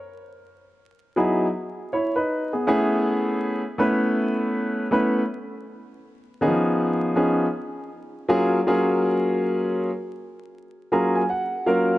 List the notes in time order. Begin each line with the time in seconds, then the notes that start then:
1.16 F#3 B3 D#4 E4 G#4
1.93 E4 C#5
2.15 D#4 B4
2.53 B3 G#4
2.67 A3 B3 C#4 E4 G#4
3.78 A3 B3 C#4 E4 B4
4.91 A3 B3 C#4 E4 B4
6.41 D#3 B3 C#4 D#4 G#4
6.47 F3
7.16 F3 B3 C#4 D#4 G#4
8.28 F#3 A#3 C#4 F4 G#4
8.66 F#3 A#3 C#4 F4 G#4
10.92 F#3 A#3 C#4 F4 G#4 A#5
11.15 G#5
11.29 F#5
11.66 F#3 A#3 C#4 F4 A#4 F5